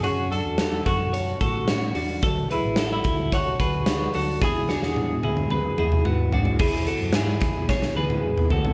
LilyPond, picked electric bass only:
\new Staff \with { instrumentName = "Picked electric bass" } { \clef bass \time 4/4 \key e \mixolydian \tempo 4 = 110 fis,8. e,8. fis,4 a,8 a,8 e,8 | d,8. a,,8. d,4 d,4 d,8 | e,8. e,8. d,4 e,8 gis,8 gis,8 | e,8. fis,16 gis,8 e,8 b,,8 d,8 e,8 d,8 | }